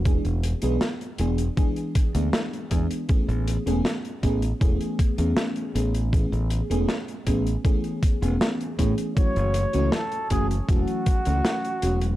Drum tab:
HH |xxxxxxxxxxxxxxxx|xxxxxxxxxxxxxxxx|xxxxxxxxxxxxxxxx|xxxxxxxxxxxxxxxx|
SD |----o-------o---|----o-------o---|----o-------o---|----o-------o---|
BD |o-------o-o---o-|o-----o-o-o-----|o-----o-o-o---o-|o-----o-o-o-----|